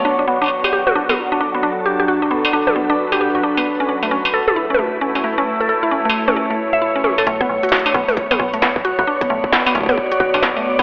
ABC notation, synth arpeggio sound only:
X:1
M:4/4
L:1/16
Q:"Swing 16ths" 1/4=133
K:Bm
V:1 name="Synth arpeggio sound"
D D B, D z G G F D B, z D D B, D z | G G F D B, z D D B, D z G G F D B, | z C C A, C z A A E C A, z C C A, C | z A A E C A, z C C A, z e E C C A |
A, B, z F F D B, A, z B, B, A, B, z F F | D B, A, z B, B, A, B, z F F D B, A, z B, |]